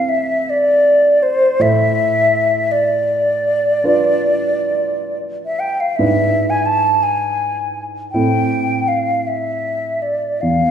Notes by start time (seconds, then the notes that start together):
Already playing: A2 C4 E4 A4 F5
0.09 E5
0.50 D5
1.23 C5
1.59 A2 E5
2.72 D5
3.84 D4 F4 B4
5.46 E5
5.59 G5
5.80 F5
5.96 G#2 D4 E4 B4 E5
6.50 G#5
6.66 A5
7.03 G#5
8.11 A2 C4 E4 A4 G5
8.88 F5
9.27 E5
10.02 D5
10.41 E2 F5